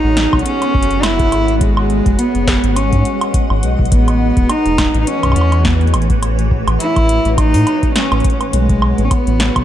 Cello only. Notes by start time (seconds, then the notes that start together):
Already playing: D#4
0.45 C#4
1.03 E4
1.61 G#3
2.19 B3
2.76 C#4
3.92 B3
4.50 D#4
5.01 D#4
5.07 C#4
5.65 B3
6.80 E4
7.38 D#4
7.96 C#4
8.53 G#3
9.05 C#4
9.11 B3